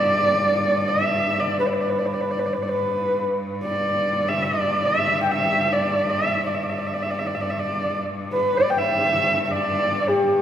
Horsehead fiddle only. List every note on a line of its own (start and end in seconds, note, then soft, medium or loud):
0.00 0.90 D5 medium
0.88 1.41 E5 medium
1.40 1.58 D5 medium
1.59 1.68 B4 medium
1.67 1.75 D5 medium
1.74 1.82 B4 medium
1.81 1.91 D5 medium
1.90 2.00 B4 medium
1.98 2.07 D5 medium
2.06 2.15 B4 medium
2.14 2.23 D5 soft
2.21 2.32 B4 medium
2.31 2.41 D5 medium
2.39 2.47 B4 medium
2.46 2.55 D5 medium
2.53 2.64 B4 soft
2.63 2.70 D5 medium
2.69 3.25 B4 medium
3.64 4.30 D5 medium
4.28 4.44 E5 medium
4.43 4.88 D5 medium
4.86 5.22 E5 medium
5.23 5.33 G5 medium
5.32 5.74 E5 medium
5.73 6.12 D5 medium
6.10 6.45 E5 medium
6.46 6.56 D5 medium
6.55 6.65 E5 medium
6.63 6.71 D5 medium
6.70 6.80 E5 medium
6.78 6.88 D5 medium
6.87 6.95 E5 medium
6.94 7.04 D5 medium
7.02 7.12 E5 medium
7.11 7.21 D5 medium
7.19 7.28 E5 medium
7.27 7.36 D5 medium
7.35 7.43 E5 medium
7.42 7.52 D5 medium
7.50 7.61 E5 medium
7.59 8.02 D5 medium
8.33 8.59 B4 medium
8.58 8.72 D5 medium
8.70 8.80 G5 medium
8.78 9.45 E5 medium
9.45 9.53 E5 medium
9.51 10.11 D5 medium
10.09 10.42 G4 medium